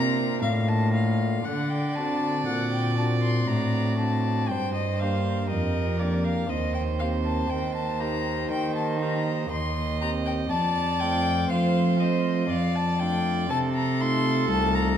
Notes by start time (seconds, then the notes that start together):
Already playing: C3 A#3 D4 F4 A#4 A#5
0.42 A2 A#3 D4 F4 F5
0.68 A5
0.94 F5
1.45 D3 D5 F#5
1.70 G5
1.95 C4 D4 F#4 A5
2.46 A#2 F#5
2.72 G5
2.97 C4 D4 F#4 A5
3.22 C6
3.47 A2 A#5
3.98 C4 D4 F#4 A5
4.49 G2 C5 G5
4.74 D#5
5.00 A#3 D4 G4 F5
5.50 F2 A#4 D#5
5.99 A#3 D4 G4 D5
6.24 F5
6.49 D#2 C5 D#5
6.74 G5
6.99 A#3 C4 G4 F5
7.25 A5
7.50 D#2 G5
7.75 A5
8.00 A#3 D#4 G4 A#5
8.50 D#3 G5
8.75 A5
9.00 A#3 D#4 G4 A#5
9.50 D#2 D#5 C6
10.01 C4 G4 A#5
10.26 G5
10.50 F2 D5 A5
11.00 A3 C4 F4 G5
11.50 F3 C5 F5
12.00 A3 C4 F4 D#5
12.50 F2 D5 F5
12.75 A5
13.00 A3 D4 F4 G5
13.50 C3 A4 A5
13.75 A#5
14.00 A3 D#4 F4 C6
14.49 C2 A5
14.75 A#5